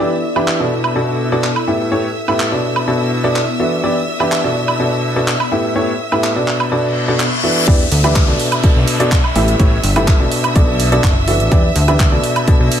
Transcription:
Already playing: B3 E4 A4 D5
0.00 E3 B3 D4 E4 G4 D5 E5 E6
0.36 E3 B3 D4 E4 G4 E5, high woodblock
0.48 clap
0.60 B2 B3 D4 F#4 A4 D5
0.71 B3
0.84 high woodblock
0.96 B2 B3 D4 F#4 A4 D5
1.32 B2 B3 D4 F#4 A4 D5
1.44 clap
1.56 high woodblock
1.68 A2 B3 E4 G4 A4 E5
1.92 A2 B3 E4 G4 A4 C#5
2.28 A2 B3 E4 G4 A4 E5, high woodblock
2.40 clap
2.52 B2 B3 D4 F#4 A4 D5
2.64 B3
2.76 high woodblock
2.88 B2 B3 D4 F#4 A4 D5
3.18 D5
3.24 B2 B3 D4 F#4 A4 D5
3.36 clap
3.60 E3 B3 D4 F#4 A4 E5
3.84 E3 B3 D4 E4 G4 D5
4.20 E3 B3 D4 E4 G4 E5, high woodblock
4.32 clap
4.44 B2 B3 D4 F#4 A4 D5
4.55 B3
4.68 high woodblock
4.80 B2 B3 D4 F#4 A4 D5
5.16 B2 B3 D4 F#4 A4 D5
5.28 clap
5.40 high woodblock
5.52 A2 B3 E4 G4 A4 E5
5.76 A2 B3 E4 G4 A4 C#5
6.12 A2 B3 E4 G4 A4 E5, high woodblock
6.24 clap
6.36 B2 B3 D4 F#4 A4 D5
6.48 B3, clap
6.60 high woodblock
6.72 B2 B3 D4 F#4 A4 D5, reverse cymbal
7.08 B2 B3 D4 F#4 A4 D5
7.20 clap
7.44 E3 B3 D4 F#4 A4 E5
7.68 E2 E3 B3 D4 E4 G4 D5 E5 E6, kick, closed hi-hat, downlifter
7.92 D2, open hi-hat
8.04 E3 B3 D4 E4 G4 E5, closed hi-hat, high woodblock
8.16 kick, clap, closed hi-hat
8.28 B2 B3 D4 F#4 A4 D5
8.40 open hi-hat
8.52 closed hi-hat, high woodblock
8.64 B2 B3 D4 F#4 A4 D5, kick, closed hi-hat
8.76 B1
8.88 open hi-hat
9.00 B2 B3 D4 F#4 A4 D5, closed hi-hat
9.12 kick, clap, closed hi-hat
9.24 high woodblock
9.36 A1 A2 B3 E4 G4 A4 E5, open hi-hat
9.48 closed hi-hat
9.60 A1 A2 B3 E4 G4 A4 C#5, kick, closed hi-hat
9.84 G1, open hi-hat
9.96 A2 B3 E4 G4 A4 E5, closed hi-hat, high woodblock
10.08 kick, clap, closed hi-hat
10.20 B2 B3 D4 F#4 A4 D5
10.32 open hi-hat
10.44 closed hi-hat, high woodblock
10.56 B1 B2 B3 D4 F#4 A4 D5, kick, closed hi-hat
10.80 open hi-hat
10.92 B2 B3 D4 F#4 A4 D5, closed hi-hat
11.04 F#1, kick, clap, closed hi-hat
11.28 E3 B3 D4 F#4 A4 E5, open hi-hat
11.40 A1, closed hi-hat
11.52 E2 E3 B3 D4 E4 G4 D5, kick, closed hi-hat
11.76 D2, open hi-hat
11.88 E3 B3 D4 E4 G4 E5, closed hi-hat, high woodblock
12.00 kick, clap, closed hi-hat
12.12 B2 B3 D4 F#4 A4 D5
12.24 open hi-hat
12.36 closed hi-hat, high woodblock
12.47 B2 B3 D4 F#4 A4 D5, kick, closed hi-hat
12.60 B1
12.72 open hi-hat

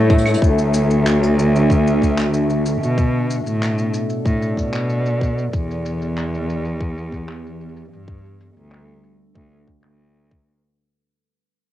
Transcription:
Already playing: A2 A3 A4 C#5 E5
0.10 kick, closed hi-hat
0.18 closed hi-hat
0.26 closed hi-hat, claves
0.34 closed hi-hat
0.41 D2 D3, kick, shaker
0.56 F#4, shaker
0.68 D4
0.74 shaker
0.91 shaker
1.07 clap, shaker
1.23 shaker
1.39 shaker
1.56 shaker
1.70 kick, shaker
1.87 shaker
2.02 kick, shaker
2.18 clap, shaker
2.34 shaker
2.50 shaker
2.66 shaker
2.82 B2, shaker
2.96 B2, kick, shaker
3.20 B3
3.31 shaker
3.45 A2, shaker
3.63 clap, shaker
3.67 A4
3.78 shaker
3.94 D5, shaker
4.10 shaker
4.25 A2, kick, shaker
4.42 shaker
4.57 B2, kick, shaker
4.74 clap, shaker
4.90 shaker
5.06 shaker
5.21 kick, shaker
5.38 shaker
5.53 E2 E3, kick, shaker
5.71 shaker
5.85 shaker
6.02 shaker
6.17 clap, shaker
6.29 G4
6.34 shaker
6.49 shaker
6.65 shaker
6.80 kick, shaker
6.98 shaker
7.12 kick, shaker
7.29 clap
7.46 shaker
7.61 shaker
7.69 shaker
7.77 shaker
7.85 shaker
7.92 G2, shaker
8.08 G3, kick, shaker
8.22 A4, shaker
8.41 shaker
8.51 D4
8.56 D2, shaker
8.72 clap, shaker
8.88 shaker
9.04 shaker
9.16 B4
9.35 D2, kick, shaker
9.51 shaker
9.68 kick, shaker
9.83 D2, clap
10.00 shaker
10.16 shaker
10.31 kick, shaker

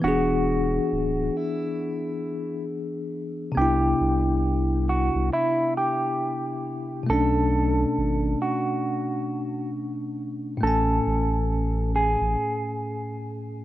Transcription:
0.00 E1 E3 B3 F#4
0.05 D4 G#4
0.92 D1
1.37 E4
3.52 C3 B3
3.56 C2 D4 G4
3.62 E4
4.01 C2
4.89 F#4
5.15 C2
5.33 E4
5.77 G4
7.03 B2 A3
7.09 B1 C#4 D4 A4
7.98 G#1
8.42 F#4
10.57 A2 A3
10.63 A1 C#4 A4
10.67 G#5
11.07 A1
11.96 G#4
12.21 A1

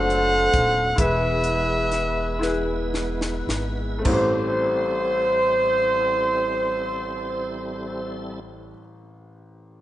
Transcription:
Already playing: F#1 F#3 A3 C4 D4 F4 F#4 A4 C5 F#5
0.10 closed hi-hat
0.54 D#1, kick, closed hi-hat
0.96 E1 E3 G#3 B3 E4 G#4 A#4 B4 E5, kick, closed hi-hat
1.00 B4
1.06 B4
1.44 closed hi-hat
1.92 snare, closed hi-hat
2.39 E4 G#4 B4, snare
2.94 snare
3.21 snare
3.47 G#1, snare
3.99 A3 C4
4.05 A1 G3 C4 E4 A4 C5, kick, floor tom, splash
4.10 G4 C5

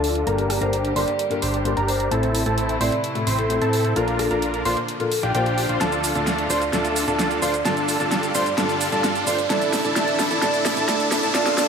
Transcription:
Already playing: D2 D3 F3 A3 D4 F4 A4 A5, riser
0.04 open hi-hat
0.15 closed hi-hat
0.26 G1 G2 G3 A#3 D4 G4 A#4 A#5, closed hi-hat
0.38 closed hi-hat
0.50 cross-stick, open hi-hat
0.61 G1 G2 A#3 D4 G4 A#4 C5 A#5, closed hi-hat
0.73 closed hi-hat
0.85 closed hi-hat
0.96 G1 G2 A#3 D4 G4 A#4 C5 D5 C6, open hi-hat
1.08 D5, closed hi-hat
1.19 closed hi-hat
1.30 G2 A#3 D4 G4 A#4, closed hi-hat
1.42 G1 D4 G4 C5 C6, open hi-hat
1.54 closed hi-hat
1.65 G2 A#3 D4 G4 A#4, closed hi-hat
1.77 G1 D4 G4 A#4 A#5, closed hi-hat
1.88 C5, open hi-hat
2.00 closed hi-hat
2.11 A1 A2 C3 E3 A3 C4 E4 A4 A5, closed hi-hat
2.23 closed hi-hat
2.35 open hi-hat
2.46 A1 A2 A3 C4 E4 A4 A5, closed hi-hat
2.58 closed hi-hat
2.69 closed hi-hat
2.80 A1 A2 A3 C4 E4 A4 C5 D5 C6, open hi-hat
2.92 closed hi-hat
3.04 closed hi-hat
3.15 A2 A3 C4 E4 A4, closed hi-hat
3.27 A1 C4 E4 C5 C6, open hi-hat
3.38 A4, closed hi-hat
3.49 A2 A3 C4 E4 A4, closed hi-hat
3.61 A2 C4 E4 A4 A5, closed hi-hat
3.73 open hi-hat
3.85 closed hi-hat
3.96 A#1 A#2 D3 F3 A#3 D4 F4 A#4 A#5, closed hi-hat
4.08 closed hi-hat
4.19 A4, cross-stick, open hi-hat
4.30 A#1 A#2 A#3 D4 F4 A#4 A#5, closed hi-hat
4.42 closed hi-hat
4.54 closed hi-hat
4.65 A#1 A#2 A#3 D4 F4 A#4 C5 C6, open hi-hat
4.77 closed hi-hat
4.88 closed hi-hat
4.99 A#2 A#3 D4 F4 A4 A#4, closed hi-hat
5.12 open hi-hat
5.23 A#1 D4 F4 G4 G5, closed hi-hat
5.34 A#1 A#2 A#3 D4 F4 G4 A#4 C5 G5, closed hi-hat
5.46 closed hi-hat
5.58 open hi-hat
5.69 A#1 D4 F4 C5 C6, closed hi-hat
5.80 D2 D3 A3 D4 F4 A4 A5, snare, closed hi-hat, shaker
5.92 closed hi-hat, shaker
6.04 open hi-hat, shaker
6.15 D2 D3 A3 D4 F4 A4 A5, closed hi-hat, shaker
6.27 snare, closed hi-hat, shaker
6.38 closed hi-hat
6.49 D2 D3 A3 D4 F4 A4 C5 D5 C6, open hi-hat, shaker
6.62 closed hi-hat, shaker
6.72 D2 D3 A3 D4 F4 A4 A5, snare, closed hi-hat, shaker
6.85 closed hi-hat, shaker
6.96 open hi-hat, shaker
7.07 D2 D3 A3 D4 F4 A4 A5, closed hi-hat, shaker
7.19 snare, closed hi-hat, shaker
7.31 closed hi-hat, shaker
7.42 D2 D3 A3 D4 F4 A4 C5 D5 C6, open hi-hat, shaker
7.54 closed hi-hat, shaker
7.65 G1 D3 G3 A3 D4 F4 G4 A4 A5, snare, closed hi-hat, shaker
7.77 closed hi-hat, shaker
7.88 open hi-hat, shaker
7.99 G1 D3 A3 D4 F4 A4 A5, closed hi-hat, shaker
8.12 snare, closed hi-hat, shaker
8.23 closed hi-hat, shaker
8.34 G1 D3 A3 D4 F4 A4 C5 D5 C6, open hi-hat, shaker
8.46 closed hi-hat, shaker
8.57 G1 D3 A3 D4 F4 A4 A5, snare, closed hi-hat, shaker
8.69 closed hi-hat, shaker
8.81 open hi-hat, shaker
8.92 G2 D3 A3 D4 F4 A4 A5, closed hi-hat, shaker
9.04 snare, closed hi-hat, shaker
9.15 closed hi-hat, shaker
9.26 G2 D3 A3 D4 F4 A4 C5 D5 C6, open hi-hat, shaker
9.39 closed hi-hat, shaker
9.49 A1 C3 D3 E3 A3 D4 E4 A4 D5 A5, snare, closed hi-hat, shaker
9.62 closed hi-hat, shaker
9.73 snare, open hi-hat, shaker
9.84 A1 D3 A3 D4 E4 A4 A5, closed hi-hat, shaker
9.95 A1 D3 A3 D4 E4 A4 D5 A5, snare, closed hi-hat, shaker
10.08 closed hi-hat
10.19 snare, open hi-hat, shaker
10.30 A1 D3 A3 D4 E4 A4 A5, closed hi-hat, shaker
10.42 A1 D3 A3 D4 E4 A4 D5 A5, snare, closed hi-hat, shaker
10.54 closed hi-hat, shaker
10.65 snare, open hi-hat, shaker
10.76 A1 D3 A3 D4 E4 A4 A5, closed hi-hat, shaker
10.88 A2 D3 A3 D4 E4 A4 D5 A5, snare, closed hi-hat, shaker
11.00 closed hi-hat, shaker
11.12 snare, open hi-hat, shaker
11.22 A2 D3 A3 D4 E4 A4 A5, closed hi-hat, shaker
11.34 A#1 D3 F3 A3 A#3 D4 F4 A4 D5 A5, snare, closed hi-hat, shaker
11.46 snare, closed hi-hat, shaker
11.57 A#1 D3 A3 D4 F4 A4 D5 A5, snare, open hi-hat, shaker

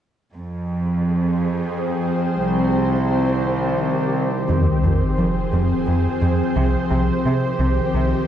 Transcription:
0.35 F2 F3 C4 G#4 C5
2.41 C2 D#3 G4
4.49 F2 F3 C4 G#4 C5, sub drop
4.83 F2
5.18 F2 F3
5.52 F2
5.87 F2
6.21 F2
6.56 C2 C3 D#3 G4
6.91 C2 C3
7.25 C3
7.59 C2 C3
7.94 C2 C3

